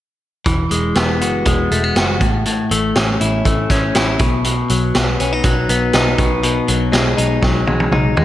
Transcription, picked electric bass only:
0.46 0.66 E1 medium
0.71 0.91 E1 medium
0.96 1.21 E1 medium
1.21 1.42 F#1 medium
1.46 1.66 E1 medium
1.71 1.91 E1 medium
1.96 2.21 F#1 medium
2.21 2.62 A1 medium
2.71 2.91 A1 medium
2.96 3.16 A1 medium
3.21 3.41 A1 medium
3.45 3.66 A1 medium
3.70 3.90 A1 medium
3.95 4.16 A1 medium
4.20 4.61 B1 medium
4.70 4.90 B1 medium
4.95 5.15 B1 medium
5.20 5.40 B1 medium
5.44 5.65 B1 medium
5.69 5.89 B1 medium
5.94 6.14 B1 medium
6.19 6.59 B1 medium
6.69 6.89 B1 medium
6.93 7.13 B1 medium
7.18 7.38 B1 medium
7.43 7.63 B1 medium
7.68 7.88 B1 medium
7.92 8.12 B1 medium
8.16 8.25 D#2 medium

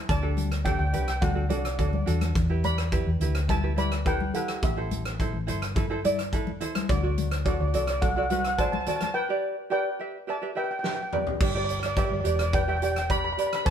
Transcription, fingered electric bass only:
0.09 0.76 D2 loud
0.79 0.93 D2 medium
0.93 1.20 C2 medium
1.22 1.49 D2 loud
1.50 1.76 C2 medium
1.79 2.04 D2 medium
2.07 2.33 E2 medium
2.36 3.03 E2 loud
3.06 3.19 E2 medium
3.20 4.30 D2 medium
4.62 5.29 A1 loud
5.33 5.46 A1 medium
5.48 6.57 G1 medium
6.89 7.56 D2 loud
7.60 7.73 D2 loud
7.74 8.83 C2 medium
11.40 12.07 G1 loud
12.10 12.24 G1 loud
12.25 13.34 E1 loud
13.66 13.70 C2 loud

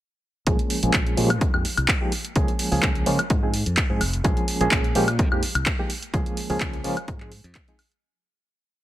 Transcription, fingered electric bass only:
0.47 0.57 A#1 medium
0.83 0.92 A#1 medium
1.18 1.41 A#2 medium
1.41 1.51 F2 medium
1.54 1.63 F2 medium
1.78 1.86 C2 medium
2.36 2.46 C#2 medium
2.72 2.81 C#2 medium
2.83 3.02 C#2 medium
3.06 3.17 C#3 medium
3.30 3.62 G#2 medium
3.66 3.75 F2 medium
3.90 3.99 G#2 loud
4.01 4.20 F1 loud
4.25 4.35 A#1 medium
4.61 4.70 A#1 loud
4.96 5.21 A#2 medium
5.19 5.29 F2 medium
5.32 5.41 F2 medium
5.55 5.64 C2 medium
6.14 6.24 C#2 loud
6.50 6.59 C#2 medium
6.61 6.80 C#2 medium
6.84 6.94 C#3 medium
7.08 7.40 G#2 medium
7.44 7.53 F2 loud

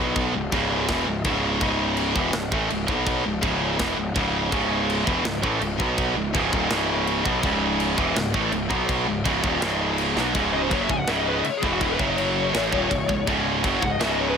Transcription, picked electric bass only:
0.00 0.31 B1 loud
0.34 0.51 C#1 medium
0.52 0.86 C#1 loud
0.89 1.05 E1 loud
1.06 1.23 C#1 medium
1.25 1.59 C#1 medium
1.61 2.12 C#1 medium
2.16 2.32 E1 medium
2.33 2.50 C#1 medium
2.52 2.69 A1 medium
2.71 2.88 C#1 medium
2.89 3.22 B1 medium
3.26 3.42 C#1 medium
3.43 3.77 C#1 medium
3.79 3.96 E1 medium
3.97 4.14 C#1 medium
4.16 4.50 C#1 medium
4.52 5.02 C#1 loud
5.07 5.23 E1 medium
5.25 5.41 C#1 medium
5.43 5.60 A1 medium
5.60 5.77 C#1 medium
5.80 6.13 B1 medium
6.15 6.32 C#1 medium
6.35 6.51 C#1 medium
6.53 6.69 D#1 loud
6.71 7.21 C#1 loud
7.25 7.42 B1 loud
7.43 7.94 C#1 loud
7.98 8.15 E1 loud
8.16 8.33 C#1 medium
8.34 8.51 A1 medium
8.52 8.69 C#1 medium
8.71 9.04 B1 loud
9.07 9.24 C#1 medium
9.26 9.42 C#1 medium
9.44 9.60 D#1 loud
9.62 10.13 C#1 medium
10.16 10.33 B1 medium
10.35 10.69 C#1 loud
10.71 10.88 F#1 medium
10.89 11.06 C#1 medium
11.07 11.41 C#1 medium
11.43 muted picked electric bass stroke soft
11.63 11.97 E1 loud
11.99 12.50 F#1 medium
12.54 12.71 A1 loud
12.73 12.89 D#1 medium
12.91 13.08 C#1 medium
13.09 13.26 C#1 medium
13.27 13.61 C#1 loud
13.64 13.81 F#1 medium
13.82 13.99 C#1 medium
14.01 14.35 C#1 loud

